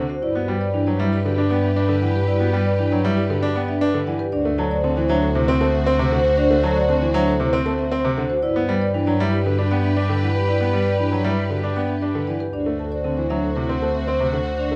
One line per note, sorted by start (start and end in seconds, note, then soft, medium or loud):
0.00 0.13 D3 medium
0.00 0.13 C5 medium
0.00 0.14 F#5 medium
0.09 0.26 F#4 medium
0.09 0.26 C5 medium
0.22 4.18 G2 medium
0.22 0.39 E4 medium
0.22 4.16 G4 medium
0.22 4.16 B4 medium
0.22 0.39 D5 medium
0.35 0.52 B3 medium
0.35 0.52 F#4 medium
0.48 0.65 G3 medium
0.48 0.65 B4 medium
0.48 0.65 G5 medium
0.61 0.78 D5 medium
0.74 0.90 E3 medium
0.74 0.90 D4 medium
0.74 0.90 G5 medium
0.87 1.03 F#3 medium
0.87 1.03 D5 medium
1.00 1.16 G3 medium
1.00 1.16 E4 medium
1.00 1.16 E5 medium
1.12 1.29 G4 medium
1.12 1.29 D5 medium
1.25 1.42 D3 medium
1.25 1.42 F#4 medium
1.25 1.42 B4 medium
1.38 1.55 D4 medium
1.50 1.67 B3 medium
1.50 1.67 D5 medium
1.50 1.68 G5 medium
1.64 1.80 D4 medium
1.64 1.80 E5 medium
1.76 1.93 D4 medium
1.76 1.93 B4 medium
1.76 1.93 D5 medium
1.89 2.06 D3 medium
2.02 2.18 E3 medium
2.02 2.19 D5 medium
2.02 2.19 F#5 medium
2.15 2.32 G4 medium
2.15 2.32 B4 loud
2.28 2.44 E4 medium
2.28 2.44 D5 medium
2.40 2.57 B3 medium
2.40 2.57 F#4 medium
2.53 2.70 G3 medium
2.53 2.70 B4 medium
2.53 2.70 G5 medium
2.66 2.83 D5 medium
2.79 2.95 E3 medium
2.79 2.96 D4 medium
2.79 2.96 G5 medium
2.92 3.08 F#3 medium
2.92 3.08 D5 medium
3.05 3.21 G3 medium
3.05 3.21 E4 medium
3.05 3.21 E5 loud
3.17 3.34 G4 medium
3.17 3.34 D5 medium
3.30 3.47 D3 medium
3.30 3.47 F#4 medium
3.30 3.47 B4 medium
3.43 3.59 D4 medium
3.43 3.60 D4 medium
3.56 3.72 B3 medium
3.56 3.72 D5 loud
3.56 3.72 G5 medium
3.68 3.85 D4 medium
3.68 3.85 E5 medium
3.81 3.98 D4 loud
3.81 3.98 B4 medium
3.81 3.98 D5 medium
3.94 4.11 D3 medium
4.07 4.24 E3 medium
4.07 4.24 D5 medium
4.07 4.24 F#5 medium
4.19 4.37 G4 medium
4.19 4.36 B4 loud
4.32 8.29 D2 medium
4.32 4.49 D4 loud
4.32 8.26 F#4 medium
4.32 8.26 C5 medium
4.32 4.49 D5 medium
4.45 4.62 A3 medium
4.58 4.75 F#3 medium
4.58 4.75 A4 medium
4.58 4.75 A5 medium
4.71 4.88 C5 medium
4.71 4.88 D5 loud
4.84 5.01 D3 medium
4.84 5.01 C4 medium
4.84 5.01 A5 medium
4.97 5.13 E3 medium
4.97 5.14 C5 medium
5.09 5.26 F#3 medium
5.09 5.26 D4 medium
5.09 5.26 E5 loud
5.22 5.39 A4 medium
5.22 5.39 C5 loud
5.35 5.52 C3 medium
5.35 5.52 E4 medium
5.35 5.52 C5 medium
5.48 5.65 C4 medium
5.48 5.65 C4 loud
5.61 5.78 A3 medium
5.61 5.78 C5 loud
5.61 5.77 A5 medium
5.73 5.90 C4 medium
5.73 5.90 E5 medium
5.86 6.03 C4 loud
5.86 6.03 C5 loud
5.86 6.03 C5 medium
5.99 6.16 C3 medium
6.12 6.29 D3 medium
6.12 6.29 C5 medium
6.12 6.29 F#5 medium
6.25 6.42 F#4 medium
6.25 6.42 C5 loud
6.37 6.54 D4 loud
6.37 6.54 D5 medium
6.51 6.67 A3 medium
6.63 6.80 F#3 medium
6.63 6.80 A4 medium
6.63 6.80 A5 medium
6.76 6.93 C5 medium
6.76 6.93 D5 loud
6.89 7.06 D3 medium
6.89 7.06 C4 loud
6.89 7.06 A5 medium
7.01 7.18 E3 medium
7.01 7.19 C5 medium
7.14 7.31 F#3 loud
7.14 7.31 D4 medium
7.14 7.31 E5 loud
7.27 7.44 A4 medium
7.27 7.44 C5 medium
7.40 7.57 C3 medium
7.40 7.57 E4 medium
7.40 7.57 C5 medium
7.53 7.70 C4 medium
7.66 7.83 A3 medium
7.66 7.83 C5 loud
7.66 7.83 A5 medium
7.79 7.95 C4 medium
7.79 7.95 E5 medium
7.91 8.08 C4 medium
7.91 8.08 C5 medium
8.05 8.21 C3 medium
8.17 8.34 D3 medium
8.17 8.34 C5 medium
8.17 8.34 F#5 medium
8.30 8.47 F#4 medium
8.30 8.47 C5 loud
8.43 12.39 G2 medium
8.43 8.60 E4 loud
8.43 12.36 G4 medium
8.43 12.36 B4 medium
8.43 8.59 D5 medium
8.56 8.72 B3 medium
8.68 8.85 G3 medium
8.68 8.85 B4 medium
8.68 8.85 G5 medium
8.81 8.98 D5 medium
8.94 9.11 E3 medium
8.94 9.11 D4 medium
8.94 9.11 G5 medium
9.07 9.24 F#3 medium
9.07 9.24 D5 medium
9.20 9.37 G3 medium
9.20 9.36 E4 medium
9.20 9.37 E5 medium
9.32 9.49 G4 medium
9.32 9.49 D5 medium
9.46 9.62 D3 medium
9.46 9.62 F#4 medium
9.46 9.62 B4 medium
9.58 9.75 D4 medium
9.71 9.88 B3 medium
9.71 9.88 D5 medium
9.71 9.88 G5 medium
9.84 10.01 D4 medium
9.84 10.01 E5 medium
9.96 10.13 D4 medium
9.96 10.13 B4 medium
9.96 10.13 D5 medium
10.09 10.26 D3 medium
10.22 10.39 E3 medium
10.22 10.39 D5 medium
10.22 10.39 F#5 medium
10.35 10.52 G4 medium
10.35 10.52 B4 medium
10.48 10.65 E4 medium
10.48 10.65 D5 medium
10.61 10.77 B3 medium
10.73 10.90 G3 medium
10.73 10.90 B4 medium
10.73 10.90 G5 medium
10.86 11.03 D5 medium
10.99 11.16 E3 medium
10.99 11.16 D4 medium
10.99 11.16 G5 medium
11.12 11.29 F#3 medium
11.12 11.29 D5 medium
11.24 11.41 G3 medium
11.24 11.42 E4 medium
11.24 11.41 E5 medium
11.38 11.54 G4 medium
11.38 11.54 D5 medium
11.50 11.67 D3 medium
11.50 11.67 F#4 medium
11.50 11.67 B4 medium
11.63 11.80 D4 medium
11.76 11.93 B3 medium
11.76 11.93 D5 medium
11.76 11.93 G5 medium
11.89 12.06 D4 medium
11.89 12.06 E5 medium
12.01 12.19 D4 medium
12.01 12.18 B4 medium
12.01 12.18 D5 medium
12.15 12.31 D3 medium
12.27 12.44 E3 medium
12.27 12.44 D5 medium
12.27 12.44 F#5 medium
12.40 12.57 G4 medium
12.40 12.57 B4 medium
12.53 14.76 D2 medium
12.53 12.70 D4 medium
12.53 14.76 F#4 medium
12.53 14.76 C5 medium
12.53 12.70 D5 medium
12.66 12.83 A3 medium
12.79 12.96 A4 medium
12.79 12.96 A5 medium
12.91 13.08 C5 medium
12.91 13.08 D5 medium
13.04 13.21 D3 medium
13.04 13.21 C4 medium
13.04 13.21 A5 medium
13.17 13.34 E3 medium
13.17 13.34 C5 medium
13.30 13.47 F#3 medium
13.30 13.47 D4 medium
13.30 13.47 E5 medium
13.43 13.60 A4 medium
13.43 13.60 C5 medium
13.56 13.73 C3 medium
13.56 13.72 E4 medium
13.56 13.72 C5 medium
13.69 13.85 C4 medium
13.81 13.98 A3 medium
13.81 13.98 C5 medium
13.81 13.98 A5 medium
13.94 14.11 C4 medium
13.94 14.11 E5 medium
14.07 14.24 C4 medium
14.07 14.24 C5 medium
14.20 14.37 C3 medium
14.32 14.49 D3 medium
14.32 14.49 C5 medium
14.32 14.49 F#5 medium
14.46 14.62 C5 medium
14.58 14.75 D4 medium
14.58 14.75 D5 medium
14.71 14.76 A3 medium